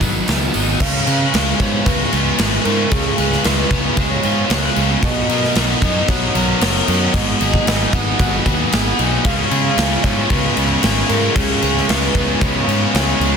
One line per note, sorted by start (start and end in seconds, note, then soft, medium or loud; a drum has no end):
0.00 0.21 G#1 medium
0.00 0.25 D#3 medium
0.00 0.52 F#3 medium
0.00 0.81 F#3 medium
0.00 0.26 B3 medium
0.00 0.80 B3 medium
0.00 0.28 D#4 medium
0.00 0.53 D#4 medium
0.00 0.27 B4 medium
0.00 kick medium
0.00 open hi-hat medium
0.26 0.48 C#2 medium
0.26 0.80 D#3 medium
0.26 0.81 B3 medium
0.26 snare loud
0.26 open hi-hat medium
0.53 0.75 G#1 medium
0.53 0.80 F#3 medium
0.53 0.80 D#4 medium
0.53 open hi-hat soft
0.79 0.99 C#2 medium
0.79 1.05 C#3 medium
0.79 2.13 C#3 medium
0.79 13.37 B3 medium
0.79 4.98 F5 medium
0.79 1.61 F5 loud
0.79 4.98 G#5 medium
0.79 4.98 C#6 medium
0.79 kick loud
0.79 crash loud
1.06 2.39 C#3 medium
1.06 1.26 C#3 medium
1.06 2.38 B4 medium
1.06 crash medium
1.33 1.52 C#2 medium
1.33 1.85 G#3 medium
1.33 2.64 F4 medium
1.33 snare loud
1.33 crash medium
1.59 1.78 G#2 medium
1.59 2.95 B3 medium
1.59 2.11 B3 medium
1.59 1.86 C#5 loud
1.59 kick medium
1.59 crash medium
1.85 2.05 C#2 medium
1.85 3.18 G#3 medium
1.85 2.38 G#3 medium
1.85 2.38 B4 medium
1.85 kick loud
1.85 crash medium
2.12 2.31 C#2 loud
2.12 3.48 B3 medium
2.12 3.44 F4 medium
2.12 crash medium
2.38 2.57 G#1 medium
2.38 3.44 G#3 medium
2.38 3.19 B4 medium
2.38 snare loud
2.38 crash loud
2.64 2.84 G#2 medium
2.64 2.91 C#3 medium
2.64 3.43 F4 medium
2.64 2.92 A#4 loud
2.64 crash medium
2.90 3.10 C#2 loud
2.90 3.17 C#3 medium
2.90 4.24 C#3 medium
2.90 3.46 G#4 loud
2.90 kick loud
2.90 crash medium
3.18 3.37 C#2 loud
3.18 4.50 C#3 medium
3.18 4.50 B4 medium
3.18 crash medium
3.32 snare soft
3.44 3.63 C#2 medium
3.44 3.97 G#3 medium
3.44 4.76 F4 medium
3.44 4.00 B4 loud
3.44 snare loud
3.44 crash medium
3.71 3.89 C#2 loud
3.71 4.24 B3 medium
3.71 5.56 B3 medium
3.71 kick medium
3.71 crash medium
3.97 4.16 C#2 loud
3.97 5.03 G#3 medium
3.97 4.50 G#3 medium
3.97 4.77 C#5 loud
3.97 kick loud
3.97 crash medium
4.23 4.43 G#2 loud
4.23 5.33 B3 medium
4.23 5.03 F4 medium
4.23 crash medium
4.50 4.68 C#2 medium
4.50 5.03 G#3 medium
4.50 5.29 B4 medium
4.50 snare loud
4.50 crash medium
4.76 4.95 C#2 loud
4.76 5.03 C#3 medium
4.76 5.03 F4 medium
4.76 crash medium
5.02 5.21 B1 medium
5.02 6.35 B2 medium
5.02 5.78 D#5 loud
5.02 9.21 F#5 medium
5.02 7.12 A#5 medium
5.02 7.12 D#6 medium
5.02 kick loud
5.02 crash loud
5.29 5.47 B2 loud
5.29 6.61 F#3 medium
5.29 6.60 A#4 medium
5.29 crash medium
5.44 snare soft
5.55 5.74 B1 medium
5.55 6.08 B3 medium
5.55 6.86 D#4 medium
5.55 snare loud
5.55 crash medium
5.82 6.00 F#2 medium
5.82 6.34 B3 medium
5.82 7.14 D#4 medium
5.82 6.10 D#5 medium
5.82 kick medium
5.82 crash medium
6.08 6.27 B1 loud
6.08 7.14 F#3 medium
6.08 6.61 B3 medium
6.08 7.15 C#5 medium
6.08 kick loud
6.08 crash medium
6.35 6.53 B1 loud
6.35 7.93 B3 medium
6.35 7.14 A#4 medium
6.35 crash medium
6.61 6.79 F#1 medium
6.61 7.66 B3 medium
6.61 7.14 A#4 medium
6.61 snare loud
6.61 crash loud
6.87 7.06 F#2 loud
6.87 7.14 F#3 medium
6.87 7.14 D#4 medium
6.87 crash medium
7.13 7.32 G#1 medium
7.13 8.46 G#2 medium
7.13 7.66 D#5 loud
7.13 13.37 G#5 medium
7.13 9.23 D#6 medium
7.13 kick loud
7.13 crash loud
7.40 7.59 G#1 loud
7.40 8.72 F#3 medium
7.40 8.72 G#4 medium
7.40 crash medium
7.54 kick medium
7.66 7.85 G#1 medium
7.66 8.19 B3 medium
7.66 8.97 D#4 medium
7.66 7.94 D#5 loud
7.66 snare loud
7.66 crash medium
7.93 8.11 G#1 medium
7.93 8.45 B3 medium
7.93 9.25 D#4 medium
7.93 8.98 F#5 loud
7.93 kick medium
7.93 crash medium
8.20 8.38 G#1 medium
8.20 9.25 F#3 medium
8.20 8.72 B3 medium
8.20 kick loud
8.20 crash medium
8.46 8.64 D#2 loud
8.46 9.28 B3 medium
8.46 9.28 B4 medium
8.46 kick medium
8.46 crash medium
8.72 8.91 G#1 medium
8.72 9.28 B3 medium
8.72 9.51 G#4 medium
8.72 snare loud
8.72 crash medium
8.99 9.17 B1 medium
8.99 9.25 F#3 medium
8.99 9.25 D#4 medium
8.99 crash medium
9.24 9.43 C#2 medium
9.24 10.30 C#3 medium
9.24 10.57 C#3 medium
9.24 10.32 G#3 loud
9.24 10.33 C#4 medium
9.24 13.37 F5 medium
9.24 10.05 F5 loud
9.24 13.37 C#6 medium
9.24 kick loud
9.24 crash medium
9.51 9.69 C#3 medium
9.51 10.83 G#3 medium
9.51 10.82 G#4 medium
9.51 crash medium
9.77 9.96 C#2 medium
9.77 10.30 B3 medium
9.77 11.08 F4 medium
9.77 snare loud
9.77 crash medium
10.03 10.22 G#2 medium
10.03 10.56 B3 medium
10.03 11.36 F4 medium
10.03 10.32 C#5 loud
10.03 kick medium
10.03 crash medium
10.30 10.49 C#2 loud
10.30 11.34 C#3 medium
10.30 11.62 G#3 medium
10.30 11.35 G#3 medium
10.30 10.83 B3 medium
10.30 11.36 C#4 medium
10.30 10.83 B4 medium
10.30 kick loud
10.30 crash medium
10.57 10.75 C#2 medium
10.57 11.92 B3 medium
10.57 12.18 B4 medium
10.57 crash medium
10.83 11.02 G#1 medium
10.83 11.89 B3 medium
10.83 11.61 G#4 medium
10.83 snare loud
10.83 crash loud
11.08 11.28 G#2 loud
11.08 11.62 G#3 medium
11.08 11.88 F4 medium
11.08 11.37 A#4 medium
11.08 crash medium
11.35 11.54 C#2 loud
11.35 12.39 C#3 medium
11.35 12.68 C#3 medium
11.35 12.40 G#3 medium
11.35 12.41 C#4 loud
11.35 11.89 G#4 loud
11.35 kick loud
11.35 crash loud
11.62 11.81 C#2 loud
11.62 12.95 G#3 medium
11.62 12.93 G#4 medium
11.62 crash medium
11.77 snare soft
11.88 12.07 C#2 medium
11.88 12.41 B3 medium
11.88 13.20 F4 medium
11.88 12.44 B4 loud
11.88 snare loud
11.88 crash medium
12.15 12.33 C#2 medium
12.15 12.68 B3 medium
12.15 13.37 F4 medium
12.15 kick medium
12.15 crash medium
12.40 12.60 C#2 medium
12.40 13.37 C#3 medium
12.40 13.37 G#3 medium
12.40 12.94 B3 medium
12.40 13.37 C#4 loud
12.40 13.21 C#5 loud
12.40 kick loud
12.40 crash medium
12.67 12.86 G#2 loud
12.67 13.37 B3 medium
12.67 13.37 B4 medium
12.67 crash medium
12.94 13.13 C#2 medium
12.94 13.37 B3 medium
12.94 13.37 G#4 medium
12.94 snare loud
12.94 crash medium
13.20 13.37 C#2 loud
13.20 13.37 G#3 medium
13.20 13.37 F4 medium
13.20 crash medium